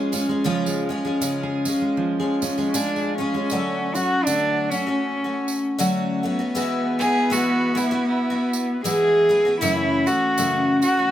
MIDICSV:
0, 0, Header, 1, 6, 480
1, 0, Start_track
1, 0, Tempo, 763359
1, 283, Time_signature, 4, 2, 24, 8
1, 6987, End_track
2, 0, Start_track
2, 0, Title_t, "Fiddle"
2, 0, Program_c, 0, 110
2, 4396, Note_on_c, 0, 68, 111
2, 4603, Note_on_c, 0, 66, 93
2, 4612, Note_off_c, 0, 68, 0
2, 4883, Note_on_c, 0, 64, 82
2, 4892, Note_off_c, 0, 66, 0
2, 5070, Note_off_c, 0, 64, 0
2, 5074, Note_on_c, 0, 64, 74
2, 5434, Note_off_c, 0, 64, 0
2, 6987, End_track
3, 0, Start_track
3, 0, Title_t, "Cello"
3, 0, Program_c, 1, 42
3, 1685, Note_on_c, 1, 61, 56
3, 1728, Note_on_c, 1, 62, 87
3, 1738, Note_off_c, 1, 61, 0
3, 2000, Note_off_c, 1, 62, 0
3, 2003, Note_on_c, 1, 61, 83
3, 2483, Note_on_c, 1, 66, 95
3, 2493, Note_off_c, 1, 61, 0
3, 2671, Note_on_c, 1, 62, 100
3, 2681, Note_off_c, 1, 66, 0
3, 2950, Note_on_c, 1, 61, 85
3, 2959, Note_off_c, 1, 62, 0
3, 3636, Note_off_c, 1, 61, 0
3, 3921, Note_on_c, 1, 59, 94
3, 5537, Note_off_c, 1, 59, 0
3, 5566, Note_on_c, 1, 68, 122
3, 6020, Note_off_c, 1, 68, 0
3, 6041, Note_on_c, 1, 64, 109
3, 6328, Note_on_c, 1, 66, 98
3, 6338, Note_off_c, 1, 64, 0
3, 6807, Note_off_c, 1, 66, 0
3, 6809, Note_on_c, 1, 66, 106
3, 6987, Note_off_c, 1, 66, 0
3, 6987, End_track
4, 0, Start_track
4, 0, Title_t, "Twelve-string acoustic guitar"
4, 0, Program_c, 2, 25
4, 0, Note_on_c, 2, 49, 83
4, 0, Note_on_c, 2, 56, 84
4, 0, Note_on_c, 2, 61, 85
4, 0, Note_on_c, 2, 65, 96
4, 0, Note_on_c, 2, 68, 97
4, 68, Note_off_c, 2, 56, 0
4, 76, Note_off_c, 2, 61, 0
4, 76, Note_on_c, 2, 56, 64
4, 79, Note_off_c, 2, 65, 0
4, 82, Note_off_c, 2, 49, 0
4, 83, Note_on_c, 2, 61, 71
4, 87, Note_on_c, 2, 65, 71
4, 88, Note_off_c, 2, 68, 0
4, 96, Note_on_c, 2, 68, 77
4, 177, Note_off_c, 2, 68, 0
4, 180, Note_off_c, 2, 56, 0
4, 183, Note_off_c, 2, 61, 0
4, 185, Note_off_c, 2, 65, 0
4, 185, Note_on_c, 2, 68, 53
4, 193, Note_on_c, 2, 65, 56
4, 197, Note_on_c, 2, 61, 46
4, 278, Note_off_c, 2, 61, 0
4, 278, Note_on_c, 2, 49, 87
4, 281, Note_off_c, 2, 65, 0
4, 281, Note_off_c, 2, 68, 0
4, 281, Note_on_c, 2, 56, 90
4, 286, Note_on_c, 2, 61, 95
4, 288, Note_on_c, 2, 65, 101
4, 289, Note_on_c, 2, 68, 97
4, 552, Note_off_c, 2, 56, 0
4, 559, Note_off_c, 2, 61, 0
4, 559, Note_on_c, 2, 56, 64
4, 562, Note_off_c, 2, 49, 0
4, 562, Note_off_c, 2, 65, 0
4, 566, Note_on_c, 2, 61, 60
4, 567, Note_off_c, 2, 68, 0
4, 569, Note_on_c, 2, 65, 73
4, 577, Note_on_c, 2, 68, 69
4, 651, Note_off_c, 2, 68, 0
4, 658, Note_on_c, 2, 68, 56
4, 661, Note_off_c, 2, 56, 0
4, 661, Note_off_c, 2, 65, 0
4, 665, Note_off_c, 2, 61, 0
4, 669, Note_on_c, 2, 65, 49
4, 675, Note_on_c, 2, 61, 45
4, 761, Note_off_c, 2, 61, 0
4, 761, Note_off_c, 2, 68, 0
4, 763, Note_off_c, 2, 65, 0
4, 763, Note_on_c, 2, 49, 75
4, 766, Note_on_c, 2, 56, 77
4, 768, Note_on_c, 2, 61, 90
4, 771, Note_on_c, 2, 65, 74
4, 773, Note_on_c, 2, 68, 81
4, 1035, Note_off_c, 2, 56, 0
4, 1042, Note_on_c, 2, 56, 72
4, 1044, Note_off_c, 2, 49, 0
4, 1044, Note_off_c, 2, 61, 0
4, 1048, Note_off_c, 2, 65, 0
4, 1049, Note_off_c, 2, 68, 0
4, 1051, Note_on_c, 2, 61, 64
4, 1056, Note_on_c, 2, 65, 71
4, 1060, Note_on_c, 2, 68, 68
4, 1374, Note_off_c, 2, 68, 0
4, 1381, Note_off_c, 2, 65, 0
4, 1381, Note_on_c, 2, 68, 55
4, 1383, Note_off_c, 2, 56, 0
4, 1388, Note_off_c, 2, 61, 0
4, 1389, Note_on_c, 2, 65, 54
4, 1399, Note_on_c, 2, 61, 43
4, 1521, Note_off_c, 2, 61, 0
4, 1521, Note_on_c, 2, 56, 57
4, 1523, Note_off_c, 2, 68, 0
4, 1527, Note_off_c, 2, 65, 0
4, 1529, Note_on_c, 2, 61, 65
4, 1534, Note_on_c, 2, 65, 55
4, 1538, Note_on_c, 2, 68, 66
4, 1613, Note_off_c, 2, 68, 0
4, 1620, Note_off_c, 2, 65, 0
4, 1621, Note_on_c, 2, 68, 53
4, 1623, Note_off_c, 2, 56, 0
4, 1626, Note_off_c, 2, 61, 0
4, 1627, Note_on_c, 2, 65, 46
4, 1638, Note_on_c, 2, 61, 38
4, 1721, Note_off_c, 2, 65, 0
4, 1722, Note_off_c, 2, 68, 0
4, 1723, Note_on_c, 2, 56, 79
4, 1729, Note_on_c, 2, 65, 87
4, 1729, Note_on_c, 2, 68, 101
4, 1731, Note_off_c, 2, 61, 0
4, 1992, Note_off_c, 2, 56, 0
4, 1999, Note_on_c, 2, 56, 64
4, 2004, Note_on_c, 2, 61, 66
4, 2005, Note_off_c, 2, 65, 0
4, 2007, Note_off_c, 2, 68, 0
4, 2012, Note_on_c, 2, 65, 74
4, 2017, Note_on_c, 2, 68, 70
4, 2095, Note_off_c, 2, 68, 0
4, 2102, Note_off_c, 2, 56, 0
4, 2103, Note_on_c, 2, 68, 57
4, 2104, Note_off_c, 2, 61, 0
4, 2105, Note_off_c, 2, 65, 0
4, 2113, Note_on_c, 2, 65, 45
4, 2121, Note_on_c, 2, 61, 43
4, 2203, Note_off_c, 2, 68, 0
4, 2208, Note_off_c, 2, 65, 0
4, 2210, Note_on_c, 2, 50, 96
4, 2211, Note_off_c, 2, 61, 0
4, 2214, Note_on_c, 2, 54, 76
4, 2215, Note_on_c, 2, 57, 76
4, 2218, Note_on_c, 2, 61, 90
4, 2221, Note_on_c, 2, 66, 92
4, 2473, Note_off_c, 2, 54, 0
4, 2481, Note_on_c, 2, 54, 58
4, 2482, Note_off_c, 2, 57, 0
4, 2486, Note_off_c, 2, 61, 0
4, 2487, Note_off_c, 2, 50, 0
4, 2489, Note_on_c, 2, 57, 61
4, 2491, Note_off_c, 2, 66, 0
4, 2494, Note_on_c, 2, 61, 69
4, 2499, Note_on_c, 2, 66, 68
4, 2679, Note_off_c, 2, 54, 0
4, 2681, Note_off_c, 2, 57, 0
4, 2684, Note_on_c, 2, 50, 82
4, 2685, Note_off_c, 2, 66, 0
4, 2687, Note_on_c, 2, 54, 74
4, 2688, Note_on_c, 2, 57, 80
4, 2689, Note_off_c, 2, 61, 0
4, 2693, Note_on_c, 2, 66, 86
4, 2956, Note_off_c, 2, 54, 0
4, 2960, Note_off_c, 2, 57, 0
4, 2964, Note_on_c, 2, 54, 64
4, 2965, Note_off_c, 2, 50, 0
4, 2968, Note_on_c, 2, 57, 60
4, 2969, Note_off_c, 2, 66, 0
4, 2979, Note_on_c, 2, 61, 62
4, 2981, Note_on_c, 2, 66, 68
4, 3052, Note_off_c, 2, 66, 0
4, 3060, Note_on_c, 2, 66, 55
4, 3063, Note_off_c, 2, 61, 0
4, 3064, Note_off_c, 2, 54, 0
4, 3066, Note_off_c, 2, 57, 0
4, 3070, Note_on_c, 2, 61, 57
4, 3079, Note_on_c, 2, 57, 42
4, 3288, Note_off_c, 2, 66, 0
4, 3296, Note_off_c, 2, 61, 0
4, 3296, Note_on_c, 2, 66, 51
4, 3303, Note_off_c, 2, 57, 0
4, 3304, Note_on_c, 2, 61, 42
4, 3311, Note_on_c, 2, 57, 39
4, 3638, Note_off_c, 2, 57, 0
4, 3638, Note_on_c, 2, 50, 102
4, 3640, Note_off_c, 2, 61, 0
4, 3640, Note_off_c, 2, 66, 0
4, 3641, Note_on_c, 2, 54, 100
4, 3645, Note_on_c, 2, 57, 93
4, 3647, Note_on_c, 2, 61, 89
4, 3648, Note_on_c, 2, 66, 113
4, 3911, Note_off_c, 2, 54, 0
4, 3916, Note_off_c, 2, 57, 0
4, 3918, Note_on_c, 2, 54, 60
4, 3921, Note_off_c, 2, 50, 0
4, 3923, Note_on_c, 2, 57, 67
4, 3924, Note_off_c, 2, 61, 0
4, 3926, Note_off_c, 2, 66, 0
4, 3932, Note_on_c, 2, 61, 70
4, 3933, Note_on_c, 2, 66, 79
4, 4010, Note_off_c, 2, 66, 0
4, 4017, Note_off_c, 2, 61, 0
4, 4018, Note_on_c, 2, 66, 59
4, 4021, Note_off_c, 2, 54, 0
4, 4023, Note_off_c, 2, 57, 0
4, 4025, Note_on_c, 2, 61, 51
4, 4033, Note_on_c, 2, 57, 46
4, 4117, Note_on_c, 2, 52, 93
4, 4120, Note_off_c, 2, 66, 0
4, 4120, Note_on_c, 2, 56, 103
4, 4123, Note_off_c, 2, 57, 0
4, 4124, Note_off_c, 2, 61, 0
4, 4125, Note_on_c, 2, 59, 99
4, 4127, Note_on_c, 2, 64, 88
4, 4128, Note_on_c, 2, 66, 98
4, 4387, Note_off_c, 2, 56, 0
4, 4394, Note_on_c, 2, 56, 63
4, 4395, Note_off_c, 2, 59, 0
4, 4399, Note_off_c, 2, 64, 0
4, 4401, Note_off_c, 2, 52, 0
4, 4403, Note_on_c, 2, 59, 62
4, 4406, Note_off_c, 2, 66, 0
4, 4406, Note_on_c, 2, 64, 70
4, 4413, Note_on_c, 2, 66, 63
4, 4589, Note_off_c, 2, 56, 0
4, 4590, Note_off_c, 2, 59, 0
4, 4590, Note_off_c, 2, 64, 0
4, 4590, Note_on_c, 2, 52, 84
4, 4594, Note_off_c, 2, 66, 0
4, 4596, Note_on_c, 2, 56, 74
4, 4598, Note_on_c, 2, 59, 95
4, 4598, Note_on_c, 2, 64, 84
4, 4602, Note_on_c, 2, 66, 88
4, 4865, Note_off_c, 2, 56, 0
4, 4873, Note_off_c, 2, 59, 0
4, 4873, Note_on_c, 2, 56, 82
4, 4877, Note_off_c, 2, 52, 0
4, 4877, Note_off_c, 2, 64, 0
4, 4880, Note_on_c, 2, 59, 67
4, 4881, Note_off_c, 2, 66, 0
4, 4885, Note_on_c, 2, 64, 75
4, 4889, Note_on_c, 2, 66, 78
4, 4966, Note_off_c, 2, 66, 0
4, 4972, Note_off_c, 2, 64, 0
4, 4974, Note_on_c, 2, 66, 76
4, 4978, Note_off_c, 2, 56, 0
4, 4980, Note_on_c, 2, 64, 62
4, 4982, Note_off_c, 2, 59, 0
4, 4989, Note_on_c, 2, 59, 56
4, 5212, Note_off_c, 2, 66, 0
4, 5220, Note_on_c, 2, 66, 63
4, 5222, Note_off_c, 2, 64, 0
4, 5226, Note_off_c, 2, 59, 0
4, 5228, Note_on_c, 2, 64, 52
4, 5234, Note_on_c, 2, 59, 41
4, 5558, Note_off_c, 2, 59, 0
4, 5559, Note_off_c, 2, 64, 0
4, 5560, Note_on_c, 2, 52, 80
4, 5561, Note_off_c, 2, 66, 0
4, 5564, Note_on_c, 2, 56, 91
4, 5566, Note_on_c, 2, 59, 88
4, 5566, Note_on_c, 2, 64, 98
4, 5573, Note_on_c, 2, 66, 91
4, 5834, Note_off_c, 2, 56, 0
4, 5839, Note_off_c, 2, 59, 0
4, 5842, Note_off_c, 2, 52, 0
4, 5842, Note_on_c, 2, 56, 68
4, 5843, Note_off_c, 2, 64, 0
4, 5846, Note_off_c, 2, 66, 0
4, 5846, Note_on_c, 2, 59, 68
4, 5851, Note_on_c, 2, 64, 75
4, 5854, Note_on_c, 2, 66, 72
4, 5934, Note_off_c, 2, 66, 0
4, 5942, Note_on_c, 2, 66, 54
4, 5943, Note_off_c, 2, 56, 0
4, 5944, Note_off_c, 2, 64, 0
4, 5945, Note_off_c, 2, 59, 0
4, 5952, Note_on_c, 2, 64, 50
4, 5961, Note_on_c, 2, 59, 47
4, 6042, Note_on_c, 2, 42, 90
4, 6043, Note_off_c, 2, 66, 0
4, 6046, Note_off_c, 2, 59, 0
4, 6046, Note_on_c, 2, 49, 91
4, 6047, Note_off_c, 2, 64, 0
4, 6047, Note_on_c, 2, 52, 90
4, 6048, Note_on_c, 2, 57, 87
4, 6050, Note_on_c, 2, 66, 86
4, 6051, Note_on_c, 2, 61, 101
4, 6319, Note_off_c, 2, 52, 0
4, 6323, Note_off_c, 2, 57, 0
4, 6324, Note_off_c, 2, 42, 0
4, 6326, Note_off_c, 2, 49, 0
4, 6327, Note_on_c, 2, 52, 52
4, 6328, Note_off_c, 2, 61, 0
4, 6328, Note_off_c, 2, 66, 0
4, 6331, Note_on_c, 2, 57, 65
4, 6336, Note_on_c, 2, 61, 67
4, 6343, Note_on_c, 2, 66, 69
4, 6523, Note_off_c, 2, 57, 0
4, 6524, Note_on_c, 2, 42, 86
4, 6525, Note_off_c, 2, 52, 0
4, 6527, Note_off_c, 2, 66, 0
4, 6528, Note_off_c, 2, 61, 0
4, 6529, Note_on_c, 2, 49, 80
4, 6531, Note_on_c, 2, 57, 74
4, 6533, Note_on_c, 2, 52, 73
4, 6535, Note_on_c, 2, 61, 83
4, 6535, Note_on_c, 2, 66, 82
4, 6794, Note_off_c, 2, 52, 0
4, 6801, Note_off_c, 2, 57, 0
4, 6801, Note_on_c, 2, 52, 72
4, 6805, Note_off_c, 2, 42, 0
4, 6806, Note_off_c, 2, 61, 0
4, 6808, Note_off_c, 2, 49, 0
4, 6809, Note_on_c, 2, 57, 63
4, 6810, Note_off_c, 2, 66, 0
4, 6813, Note_on_c, 2, 61, 73
4, 6817, Note_on_c, 2, 66, 75
4, 6891, Note_off_c, 2, 66, 0
4, 6899, Note_off_c, 2, 61, 0
4, 6899, Note_on_c, 2, 66, 57
4, 6903, Note_off_c, 2, 52, 0
4, 6905, Note_off_c, 2, 57, 0
4, 6907, Note_on_c, 2, 61, 53
4, 6913, Note_on_c, 2, 57, 52
4, 6916, Note_on_c, 2, 52, 47
4, 6987, Note_off_c, 2, 52, 0
4, 6987, Note_off_c, 2, 57, 0
4, 6987, Note_off_c, 2, 61, 0
4, 6987, Note_off_c, 2, 66, 0
4, 6987, End_track
5, 0, Start_track
5, 0, Title_t, "Steel-string acoustic guitar"
5, 0, Program_c, 3, 25
5, 0, Note_on_c, 3, 53, 77
5, 0, Note_on_c, 3, 56, 60
5, 0, Note_on_c, 3, 61, 62
5, 0, Note_on_c, 3, 68, 60
5, 78, Note_off_c, 3, 61, 0
5, 80, Note_on_c, 3, 61, 53
5, 174, Note_off_c, 3, 56, 0
5, 181, Note_on_c, 3, 56, 58
5, 278, Note_off_c, 3, 53, 0
5, 286, Note_on_c, 3, 53, 81
5, 415, Note_off_c, 3, 56, 0
5, 423, Note_on_c, 3, 56, 59
5, 554, Note_off_c, 3, 61, 0
5, 561, Note_on_c, 3, 61, 52
5, 653, Note_off_c, 3, 56, 0
5, 661, Note_on_c, 3, 56, 63
5, 752, Note_off_c, 3, 61, 0
5, 759, Note_on_c, 3, 61, 58
5, 893, Note_off_c, 3, 68, 0
5, 901, Note_on_c, 3, 68, 62
5, 1035, Note_off_c, 3, 61, 0
5, 1042, Note_on_c, 3, 61, 53
5, 1135, Note_off_c, 3, 56, 0
5, 1142, Note_on_c, 3, 56, 52
5, 1233, Note_off_c, 3, 53, 0
5, 1240, Note_on_c, 3, 53, 73
5, 1373, Note_off_c, 3, 56, 0
5, 1380, Note_on_c, 3, 56, 60
5, 1516, Note_off_c, 3, 61, 0
5, 1523, Note_on_c, 3, 61, 51
5, 1616, Note_off_c, 3, 56, 0
5, 1623, Note_on_c, 3, 56, 59
5, 1723, Note_off_c, 3, 61, 0
5, 1857, Note_off_c, 3, 68, 0
5, 1864, Note_on_c, 3, 68, 52
5, 2002, Note_on_c, 3, 61, 59
5, 2093, Note_off_c, 3, 56, 0
5, 2101, Note_on_c, 3, 56, 60
5, 2258, Note_off_c, 3, 53, 0
5, 2258, Note_off_c, 3, 56, 0
5, 2259, Note_off_c, 3, 61, 0
5, 2260, Note_off_c, 3, 68, 0
5, 6987, End_track
6, 0, Start_track
6, 0, Title_t, "Drums"
6, 80, Note_on_c, 9, 54, 71
6, 143, Note_off_c, 9, 54, 0
6, 283, Note_on_c, 9, 54, 25
6, 346, Note_off_c, 9, 54, 0
6, 417, Note_on_c, 9, 54, 60
6, 480, Note_off_c, 9, 54, 0
6, 765, Note_on_c, 9, 54, 96
6, 828, Note_off_c, 9, 54, 0
6, 1039, Note_on_c, 9, 54, 78
6, 1102, Note_off_c, 9, 54, 0
6, 1521, Note_on_c, 9, 54, 82
6, 1584, Note_off_c, 9, 54, 0
6, 1620, Note_on_c, 9, 54, 28
6, 1683, Note_off_c, 9, 54, 0
6, 1723, Note_on_c, 9, 54, 93
6, 1786, Note_off_c, 9, 54, 0
6, 1862, Note_on_c, 9, 54, 29
6, 1925, Note_off_c, 9, 54, 0
6, 2199, Note_on_c, 9, 54, 71
6, 2262, Note_off_c, 9, 54, 0
6, 2486, Note_on_c, 9, 54, 64
6, 2548, Note_off_c, 9, 54, 0
6, 2684, Note_on_c, 9, 54, 85
6, 2746, Note_off_c, 9, 54, 0
6, 2965, Note_on_c, 9, 54, 60
6, 3028, Note_off_c, 9, 54, 0
6, 3445, Note_on_c, 9, 54, 67
6, 3508, Note_off_c, 9, 54, 0
6, 3643, Note_on_c, 9, 54, 77
6, 3706, Note_off_c, 9, 54, 0
6, 4129, Note_on_c, 9, 54, 64
6, 4192, Note_off_c, 9, 54, 0
6, 4407, Note_on_c, 9, 54, 54
6, 4470, Note_off_c, 9, 54, 0
6, 4607, Note_on_c, 9, 54, 74
6, 4670, Note_off_c, 9, 54, 0
6, 4888, Note_on_c, 9, 54, 60
6, 4951, Note_off_c, 9, 54, 0
6, 5366, Note_on_c, 9, 54, 77
6, 5429, Note_off_c, 9, 54, 0
6, 5567, Note_on_c, 9, 54, 82
6, 5630, Note_off_c, 9, 54, 0
6, 6051, Note_on_c, 9, 54, 73
6, 6113, Note_off_c, 9, 54, 0
6, 6332, Note_on_c, 9, 54, 62
6, 6395, Note_off_c, 9, 54, 0
6, 6525, Note_on_c, 9, 54, 81
6, 6588, Note_off_c, 9, 54, 0
6, 6806, Note_on_c, 9, 54, 76
6, 6869, Note_off_c, 9, 54, 0
6, 6987, End_track
0, 0, End_of_file